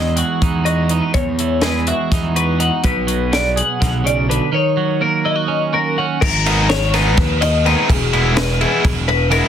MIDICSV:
0, 0, Header, 1, 7, 480
1, 0, Start_track
1, 0, Tempo, 480769
1, 1149, Time_signature, 7, 3, 24, 8
1, 9465, End_track
2, 0, Start_track
2, 0, Title_t, "Clean electric guitar"
2, 0, Program_c, 0, 27
2, 0, Note_on_c, 0, 75, 71
2, 164, Note_off_c, 0, 75, 0
2, 164, Note_on_c, 0, 78, 72
2, 651, Note_on_c, 0, 75, 81
2, 657, Note_off_c, 0, 78, 0
2, 895, Note_off_c, 0, 75, 0
2, 895, Note_on_c, 0, 71, 68
2, 1134, Note_off_c, 0, 71, 0
2, 1138, Note_on_c, 0, 73, 86
2, 1616, Note_off_c, 0, 73, 0
2, 1620, Note_on_c, 0, 71, 85
2, 1868, Note_off_c, 0, 71, 0
2, 1876, Note_on_c, 0, 76, 71
2, 2357, Note_on_c, 0, 71, 78
2, 2358, Note_off_c, 0, 76, 0
2, 2595, Note_on_c, 0, 78, 75
2, 2598, Note_off_c, 0, 71, 0
2, 2838, Note_off_c, 0, 78, 0
2, 2848, Note_on_c, 0, 71, 87
2, 3326, Note_off_c, 0, 71, 0
2, 3332, Note_on_c, 0, 74, 79
2, 3568, Note_off_c, 0, 74, 0
2, 3578, Note_on_c, 0, 78, 75
2, 4052, Note_off_c, 0, 78, 0
2, 4056, Note_on_c, 0, 74, 85
2, 4287, Note_off_c, 0, 74, 0
2, 4291, Note_on_c, 0, 71, 77
2, 4529, Note_off_c, 0, 71, 0
2, 4536, Note_on_c, 0, 73, 89
2, 5005, Note_off_c, 0, 73, 0
2, 5009, Note_on_c, 0, 70, 79
2, 5246, Note_on_c, 0, 75, 74
2, 5249, Note_off_c, 0, 70, 0
2, 5727, Note_off_c, 0, 75, 0
2, 5729, Note_on_c, 0, 70, 83
2, 5968, Note_off_c, 0, 70, 0
2, 5970, Note_on_c, 0, 78, 70
2, 6202, Note_on_c, 0, 70, 98
2, 6209, Note_off_c, 0, 78, 0
2, 6682, Note_on_c, 0, 73, 85
2, 6683, Note_off_c, 0, 70, 0
2, 6923, Note_off_c, 0, 73, 0
2, 6926, Note_on_c, 0, 71, 75
2, 7398, Note_on_c, 0, 75, 86
2, 7403, Note_off_c, 0, 71, 0
2, 7639, Note_off_c, 0, 75, 0
2, 7645, Note_on_c, 0, 71, 81
2, 7881, Note_off_c, 0, 71, 0
2, 7881, Note_on_c, 0, 68, 99
2, 8350, Note_off_c, 0, 68, 0
2, 8354, Note_on_c, 0, 71, 89
2, 8594, Note_off_c, 0, 71, 0
2, 8594, Note_on_c, 0, 68, 86
2, 9061, Note_off_c, 0, 68, 0
2, 9065, Note_on_c, 0, 71, 92
2, 9295, Note_off_c, 0, 71, 0
2, 9299, Note_on_c, 0, 70, 82
2, 9465, Note_off_c, 0, 70, 0
2, 9465, End_track
3, 0, Start_track
3, 0, Title_t, "Clean electric guitar"
3, 0, Program_c, 1, 27
3, 0, Note_on_c, 1, 40, 73
3, 0, Note_on_c, 1, 52, 58
3, 0, Note_on_c, 1, 56, 51
3, 0, Note_on_c, 1, 63, 60
3, 0, Note_on_c, 1, 66, 62
3, 179, Note_off_c, 1, 66, 0
3, 183, Note_on_c, 1, 66, 60
3, 416, Note_off_c, 1, 63, 0
3, 428, Note_on_c, 1, 63, 62
3, 654, Note_off_c, 1, 66, 0
3, 658, Note_on_c, 1, 66, 56
3, 894, Note_off_c, 1, 63, 0
3, 906, Note_on_c, 1, 63, 55
3, 1119, Note_off_c, 1, 63, 0
3, 1141, Note_off_c, 1, 40, 0
3, 1153, Note_on_c, 1, 40, 72
3, 1183, Note_off_c, 1, 66, 0
3, 1383, Note_off_c, 1, 52, 0
3, 1396, Note_on_c, 1, 52, 58
3, 1629, Note_off_c, 1, 56, 0
3, 1641, Note_on_c, 1, 56, 60
3, 1872, Note_on_c, 1, 66, 60
3, 2132, Note_on_c, 1, 63, 63
3, 2354, Note_off_c, 1, 66, 0
3, 2358, Note_on_c, 1, 66, 59
3, 2583, Note_off_c, 1, 63, 0
3, 2595, Note_on_c, 1, 63, 61
3, 2809, Note_off_c, 1, 63, 0
3, 2834, Note_on_c, 1, 47, 73
3, 2841, Note_off_c, 1, 40, 0
3, 2842, Note_off_c, 1, 52, 0
3, 2843, Note_off_c, 1, 56, 0
3, 3065, Note_on_c, 1, 54, 58
3, 3317, Note_on_c, 1, 59, 60
3, 3553, Note_off_c, 1, 66, 0
3, 3557, Note_on_c, 1, 68, 59
3, 3784, Note_off_c, 1, 47, 0
3, 3796, Note_on_c, 1, 47, 63
3, 4030, Note_off_c, 1, 47, 0
3, 4034, Note_on_c, 1, 49, 64
3, 4280, Note_off_c, 1, 49, 0
3, 4286, Note_on_c, 1, 50, 65
3, 4494, Note_off_c, 1, 68, 0
3, 4495, Note_off_c, 1, 59, 0
3, 4511, Note_off_c, 1, 50, 0
3, 4515, Note_on_c, 1, 51, 74
3, 4757, Note_off_c, 1, 54, 0
3, 4761, Note_on_c, 1, 54, 65
3, 5000, Note_on_c, 1, 58, 59
3, 5241, Note_on_c, 1, 64, 64
3, 5347, Note_off_c, 1, 64, 0
3, 5347, Note_on_c, 1, 66, 46
3, 5472, Note_on_c, 1, 61, 68
3, 5709, Note_off_c, 1, 66, 0
3, 5721, Note_on_c, 1, 66, 60
3, 5960, Note_off_c, 1, 61, 0
3, 5976, Note_on_c, 1, 61, 61
3, 6173, Note_off_c, 1, 51, 0
3, 6175, Note_off_c, 1, 58, 0
3, 6175, Note_off_c, 1, 66, 0
3, 6176, Note_off_c, 1, 54, 0
3, 6183, Note_off_c, 1, 61, 0
3, 9465, End_track
4, 0, Start_track
4, 0, Title_t, "Overdriven electric guitar"
4, 0, Program_c, 2, 29
4, 6455, Note_on_c, 2, 63, 99
4, 6458, Note_on_c, 2, 59, 92
4, 6464, Note_on_c, 2, 56, 80
4, 6469, Note_on_c, 2, 51, 70
4, 6683, Note_off_c, 2, 51, 0
4, 6684, Note_off_c, 2, 56, 0
4, 6690, Note_off_c, 2, 63, 0
4, 6692, Note_off_c, 2, 59, 0
4, 6929, Note_on_c, 2, 63, 92
4, 6933, Note_on_c, 2, 59, 94
4, 6938, Note_on_c, 2, 51, 73
4, 6942, Note_on_c, 2, 56, 90
4, 7147, Note_off_c, 2, 51, 0
4, 7150, Note_off_c, 2, 56, 0
4, 7155, Note_off_c, 2, 59, 0
4, 7158, Note_off_c, 2, 63, 0
4, 7643, Note_on_c, 2, 51, 84
4, 7644, Note_on_c, 2, 56, 92
4, 7648, Note_on_c, 2, 59, 99
4, 7651, Note_on_c, 2, 63, 115
4, 7873, Note_off_c, 2, 56, 0
4, 7875, Note_off_c, 2, 51, 0
4, 7879, Note_off_c, 2, 59, 0
4, 7884, Note_off_c, 2, 63, 0
4, 8119, Note_on_c, 2, 59, 85
4, 8121, Note_on_c, 2, 64, 96
4, 8129, Note_on_c, 2, 52, 73
4, 8129, Note_on_c, 2, 56, 84
4, 8349, Note_off_c, 2, 52, 0
4, 8351, Note_off_c, 2, 56, 0
4, 8356, Note_off_c, 2, 59, 0
4, 8357, Note_off_c, 2, 64, 0
4, 8596, Note_on_c, 2, 64, 105
4, 8606, Note_on_c, 2, 59, 90
4, 8611, Note_on_c, 2, 56, 78
4, 8616, Note_on_c, 2, 52, 74
4, 8826, Note_off_c, 2, 52, 0
4, 8826, Note_off_c, 2, 56, 0
4, 8828, Note_off_c, 2, 59, 0
4, 8832, Note_off_c, 2, 64, 0
4, 9295, Note_on_c, 2, 52, 94
4, 9304, Note_on_c, 2, 59, 96
4, 9306, Note_on_c, 2, 56, 99
4, 9314, Note_on_c, 2, 64, 105
4, 9465, Note_off_c, 2, 52, 0
4, 9465, Note_off_c, 2, 56, 0
4, 9465, Note_off_c, 2, 59, 0
4, 9465, Note_off_c, 2, 64, 0
4, 9465, End_track
5, 0, Start_track
5, 0, Title_t, "Picked electric bass"
5, 0, Program_c, 3, 34
5, 0, Note_on_c, 3, 40, 94
5, 216, Note_off_c, 3, 40, 0
5, 421, Note_on_c, 3, 40, 78
5, 996, Note_off_c, 3, 40, 0
5, 1145, Note_on_c, 3, 40, 99
5, 1912, Note_off_c, 3, 40, 0
5, 2113, Note_on_c, 3, 40, 83
5, 2687, Note_off_c, 3, 40, 0
5, 2837, Note_on_c, 3, 35, 101
5, 3603, Note_off_c, 3, 35, 0
5, 3811, Note_on_c, 3, 35, 78
5, 4381, Note_off_c, 3, 35, 0
5, 6211, Note_on_c, 3, 32, 106
5, 7163, Note_off_c, 3, 32, 0
5, 7163, Note_on_c, 3, 39, 97
5, 7730, Note_off_c, 3, 39, 0
5, 7882, Note_on_c, 3, 28, 106
5, 8635, Note_off_c, 3, 28, 0
5, 8829, Note_on_c, 3, 28, 97
5, 9395, Note_off_c, 3, 28, 0
5, 9465, End_track
6, 0, Start_track
6, 0, Title_t, "Muted overdriven electric guitar strokes"
6, 6209, Note_on_c, 9, 29, 52
6, 6308, Note_off_c, 9, 29, 0
6, 6695, Note_on_c, 9, 29, 54
6, 6795, Note_off_c, 9, 29, 0
6, 7159, Note_on_c, 9, 29, 53
6, 7259, Note_off_c, 9, 29, 0
6, 7405, Note_on_c, 9, 29, 61
6, 7505, Note_off_c, 9, 29, 0
6, 7879, Note_on_c, 9, 29, 49
6, 7979, Note_off_c, 9, 29, 0
6, 8361, Note_on_c, 9, 29, 54
6, 8461, Note_off_c, 9, 29, 0
6, 8838, Note_on_c, 9, 29, 55
6, 8938, Note_off_c, 9, 29, 0
6, 9074, Note_on_c, 9, 29, 53
6, 9174, Note_off_c, 9, 29, 0
6, 9465, End_track
7, 0, Start_track
7, 0, Title_t, "Drums"
7, 167, Note_on_c, 9, 42, 60
7, 267, Note_off_c, 9, 42, 0
7, 418, Note_on_c, 9, 36, 107
7, 418, Note_on_c, 9, 42, 73
7, 518, Note_off_c, 9, 36, 0
7, 518, Note_off_c, 9, 42, 0
7, 658, Note_on_c, 9, 42, 55
7, 757, Note_off_c, 9, 42, 0
7, 893, Note_on_c, 9, 42, 62
7, 993, Note_off_c, 9, 42, 0
7, 1138, Note_on_c, 9, 42, 80
7, 1143, Note_on_c, 9, 36, 102
7, 1238, Note_off_c, 9, 42, 0
7, 1243, Note_off_c, 9, 36, 0
7, 1385, Note_on_c, 9, 42, 60
7, 1485, Note_off_c, 9, 42, 0
7, 1613, Note_on_c, 9, 42, 76
7, 1616, Note_on_c, 9, 38, 106
7, 1712, Note_off_c, 9, 42, 0
7, 1715, Note_off_c, 9, 38, 0
7, 1865, Note_on_c, 9, 42, 64
7, 1965, Note_off_c, 9, 42, 0
7, 2113, Note_on_c, 9, 36, 107
7, 2114, Note_on_c, 9, 42, 90
7, 2117, Note_on_c, 9, 38, 34
7, 2213, Note_off_c, 9, 36, 0
7, 2214, Note_off_c, 9, 42, 0
7, 2217, Note_off_c, 9, 38, 0
7, 2359, Note_on_c, 9, 42, 63
7, 2459, Note_off_c, 9, 42, 0
7, 2597, Note_on_c, 9, 42, 68
7, 2697, Note_off_c, 9, 42, 0
7, 2832, Note_on_c, 9, 42, 85
7, 2840, Note_on_c, 9, 36, 98
7, 2931, Note_off_c, 9, 42, 0
7, 2940, Note_off_c, 9, 36, 0
7, 3076, Note_on_c, 9, 42, 64
7, 3176, Note_off_c, 9, 42, 0
7, 3324, Note_on_c, 9, 42, 79
7, 3327, Note_on_c, 9, 38, 100
7, 3424, Note_off_c, 9, 42, 0
7, 3427, Note_off_c, 9, 38, 0
7, 3568, Note_on_c, 9, 42, 65
7, 3668, Note_off_c, 9, 42, 0
7, 3812, Note_on_c, 9, 36, 103
7, 3813, Note_on_c, 9, 42, 90
7, 3816, Note_on_c, 9, 38, 36
7, 3911, Note_off_c, 9, 36, 0
7, 3913, Note_off_c, 9, 42, 0
7, 3916, Note_off_c, 9, 38, 0
7, 4061, Note_on_c, 9, 42, 61
7, 4161, Note_off_c, 9, 42, 0
7, 4305, Note_on_c, 9, 42, 58
7, 4405, Note_off_c, 9, 42, 0
7, 6212, Note_on_c, 9, 36, 113
7, 6215, Note_on_c, 9, 49, 127
7, 6311, Note_off_c, 9, 36, 0
7, 6315, Note_off_c, 9, 49, 0
7, 6453, Note_on_c, 9, 51, 90
7, 6553, Note_off_c, 9, 51, 0
7, 6685, Note_on_c, 9, 51, 112
7, 6688, Note_on_c, 9, 38, 116
7, 6785, Note_off_c, 9, 51, 0
7, 6788, Note_off_c, 9, 38, 0
7, 6925, Note_on_c, 9, 51, 97
7, 6928, Note_on_c, 9, 38, 36
7, 7025, Note_off_c, 9, 51, 0
7, 7028, Note_off_c, 9, 38, 0
7, 7162, Note_on_c, 9, 51, 119
7, 7165, Note_on_c, 9, 36, 122
7, 7165, Note_on_c, 9, 38, 40
7, 7262, Note_off_c, 9, 51, 0
7, 7265, Note_off_c, 9, 36, 0
7, 7265, Note_off_c, 9, 38, 0
7, 7407, Note_on_c, 9, 51, 93
7, 7506, Note_off_c, 9, 51, 0
7, 7648, Note_on_c, 9, 51, 86
7, 7748, Note_off_c, 9, 51, 0
7, 7883, Note_on_c, 9, 36, 109
7, 7888, Note_on_c, 9, 51, 115
7, 7983, Note_off_c, 9, 36, 0
7, 7988, Note_off_c, 9, 51, 0
7, 8120, Note_on_c, 9, 51, 79
7, 8220, Note_off_c, 9, 51, 0
7, 8354, Note_on_c, 9, 51, 106
7, 8357, Note_on_c, 9, 38, 107
7, 8454, Note_off_c, 9, 51, 0
7, 8457, Note_off_c, 9, 38, 0
7, 8596, Note_on_c, 9, 51, 85
7, 8696, Note_off_c, 9, 51, 0
7, 8831, Note_on_c, 9, 51, 111
7, 8833, Note_on_c, 9, 36, 117
7, 8931, Note_off_c, 9, 51, 0
7, 8933, Note_off_c, 9, 36, 0
7, 9070, Note_on_c, 9, 51, 82
7, 9170, Note_off_c, 9, 51, 0
7, 9299, Note_on_c, 9, 51, 80
7, 9399, Note_off_c, 9, 51, 0
7, 9465, End_track
0, 0, End_of_file